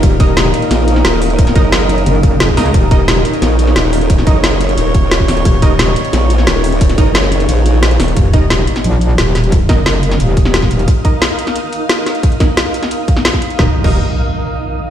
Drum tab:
CC |----------------|----------------|----------------|----------------|
HH |x-x-x-xxx-x-x-ox|xxx-x-xxx-x-x-ox|x-x-x-xxx-x-x-ox|x-x-x-xxx-x-x-ox|
SD |----o---o--oo---|-o--o-------o-o-|----o---o--oo---|-o--o-------o-o-|
BD |o-o-------------|o-o-------o--o--|o-o-------------|o-o-------o--o--|

CC |----------------|----------------|----------------|----------------|
HH |x-x-x-xxx-x-x-ox|xxx-x-xxx-x-xxox|x-x-x-xxx-x-x-xx|x-x-x-xxx-x-x-xx|
SD |----o---o--oo---|-o--oo------o-o-|----o--o----o-o-|--o-o--o---ooo--|
BD |o-o-------------|o-o-------------|o-o-------------|o-o-------o--o--|

CC |----------------|----------------|---x------------|
HH |x-x-x-xxx-x-x-xx|xxx-x-xxx-x-x-xx|----------------|
SD |----o--o----o-o-|--o-o--o---ooo--|o---------------|
BD |o-o-------------|o-o-------o--o--|o--o------------|